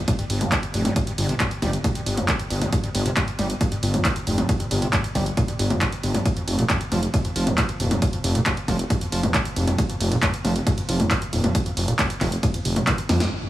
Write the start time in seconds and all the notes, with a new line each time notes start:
Already playing: sub drop
0.08 A#2, kick, closed hi-hat, ride
0.19 G2, closed hi-hat, ride
0.30 G1 G2, open hi-hat, ride
0.41 F2, closed hi-hat, mid tom, ride
0.52 D3, kick, clap, closed hi-hat, ride
0.63 closed hi-hat, ride
0.74 F1 G2, open hi-hat, ride
0.85 G2, closed hi-hat, mid tom, ride
0.96 kick, closed hi-hat, ride
1.07 G2, closed hi-hat, ride
1.18 G1 G2, open hi-hat, ride
1.29 C3, closed hi-hat, ride
1.40 G2, kick, clap, closed hi-hat, ride
1.51 closed hi-hat, ride
1.62 G1 G3, kick, open hi-hat, mid tom, ride
1.73 closed hi-hat, ride
1.84 A#2, kick, closed hi-hat, ride
1.95 G2, closed hi-hat, ride
2.06 G1 G2, open hi-hat, ride
2.17 F2, closed hi-hat, mid tom, ride
2.28 D3, kick, clap, closed hi-hat, ride
2.39 closed hi-hat, ride
2.50 G1 G2, open hi-hat, ride
2.61 G2, closed hi-hat, mid tom, ride
2.73 kick, closed hi-hat, ride
2.84 G2, closed hi-hat, ride
2.95 G1 G2, open hi-hat, ride
3.06 C3, closed hi-hat, ride
3.17 G2, kick, clap, closed hi-hat, ride
3.28 closed hi-hat, ride
3.39 G1 G3, open hi-hat, mid tom, ride
3.50 closed hi-hat, ride
3.61 A#2, kick, closed hi-hat, ride
3.72 G2, closed hi-hat, ride
3.83 G1 G2, open hi-hat, ride
3.94 F2, closed hi-hat, mid tom, ride
4.05 D3, kick, clap, closed hi-hat, ride
4.16 closed hi-hat, ride
4.27 F1 G2, open hi-hat, ride
4.38 G2, closed hi-hat, mid tom, ride
4.49 kick, closed hi-hat, ride
4.60 G2, closed hi-hat, ride
4.71 G1 G2, open hi-hat, ride
4.82 C3, closed hi-hat, ride
4.93 G2, kick, clap, closed hi-hat, ride
5.04 closed hi-hat, ride
5.15 G1 G3, kick, open hi-hat, mid tom, ride
5.26 closed hi-hat, ride
5.37 A#2, kick, closed hi-hat, ride
5.48 G2, closed hi-hat, ride
5.59 G1 G2, open hi-hat, ride
5.70 F2, closed hi-hat, mid tom, ride
5.81 D3, kick, clap, closed hi-hat, ride
5.92 closed hi-hat, ride
6.03 G1 G2, open hi-hat, ride
6.14 G2, closed hi-hat, mid tom, ride
6.25 kick, closed hi-hat, ride
6.37 F2, closed hi-hat, ride
6.48 F1 F2, open hi-hat, ride
6.59 A#2, closed hi-hat, ride
6.70 F2, kick, clap, closed hi-hat, ride
6.81 closed hi-hat, ride
6.92 F1 F3, open hi-hat, mid tom, ride
7.03 closed hi-hat, ride
7.14 G#2, kick, closed hi-hat, ride
7.25 F2, closed hi-hat, ride
7.36 F1 F3, open hi-hat, ride
7.47 D#2, closed hi-hat, mid tom, ride
7.58 C3, kick, clap, closed hi-hat, ride
7.69 closed hi-hat, ride
7.80 D#1 F2, open hi-hat, ride
7.91 F2, closed hi-hat, mid tom, ride
8.02 kick, closed hi-hat, ride
8.13 F2, closed hi-hat, ride
8.24 F1 F2, open hi-hat, ride
8.35 A#2, closed hi-hat, ride
8.46 F2, kick, clap, closed hi-hat, ride
8.57 closed hi-hat, ride
8.68 F1 F3, kick, open hi-hat, mid tom, ride
8.79 closed hi-hat, ride
8.90 G#2, kick, closed hi-hat, ride
9.01 F2, closed hi-hat, ride
9.12 F1 F3, open hi-hat, ride
9.23 D#2, closed hi-hat, mid tom, ride
9.34 C3, kick, clap, closed hi-hat, ride
9.45 closed hi-hat, ride
9.56 F1 F2, open hi-hat, ride
9.67 F2, closed hi-hat, mid tom, ride
9.78 kick, closed hi-hat, ride
9.89 F2, closed hi-hat, ride
10.00 F1 F2, open hi-hat, ride
10.11 A#2, closed hi-hat, ride
10.22 F2, kick, clap, closed hi-hat, ride
10.34 closed hi-hat, ride
10.44 F1 F3, open hi-hat, mid tom, ride
10.56 closed hi-hat, ride
10.66 G#2, kick, closed hi-hat, ride
10.78 F2, closed hi-hat, ride
10.89 F1 F3, open hi-hat, ride
11.00 D#2, closed hi-hat, mid tom, ride
11.11 C3, kick, clap, closed hi-hat, ride
11.22 closed hi-hat, ride
11.33 D#1 F2, open hi-hat, ride
11.44 F2, closed hi-hat, mid tom, ride
11.55 kick, closed hi-hat, ride
11.66 F2, closed hi-hat, ride
11.77 F1 F2, open hi-hat, ride
11.88 A#2, closed hi-hat, ride
11.99 F2, kick, clap, closed hi-hat, ride
12.10 closed hi-hat, ride
12.21 F1 F3, kick, clap, open hi-hat, mid tom, ride
12.32 closed hi-hat, ride
12.43 G#2, kick, closed hi-hat, ride
12.54 F2, closed hi-hat, ride
12.65 F1 C3, open hi-hat, ride
12.76 C3, closed hi-hat, mid tom, ride
12.87 D#3, kick, clap, closed hi-hat, ride
12.98 closed hi-hat, ride
13.09 F2, snare, open hi-hat, ride
13.20 G2, snare, closed hi-hat, mid tom, ride
13.31 G1
13.42 G2